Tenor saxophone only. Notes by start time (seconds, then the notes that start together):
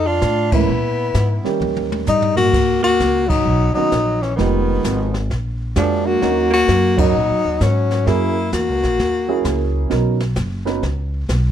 0.07 D4
0.53 B3
2.09 D#4
2.37 F#4
2.84 F#4
3.29 D#4
3.75 D#4
4.22 C#4
4.37 B3
5.78 D4
6.06 F#4
6.53 F#4
7.00 D#4
7.62 C#4
8.08 E4
8.54 F#4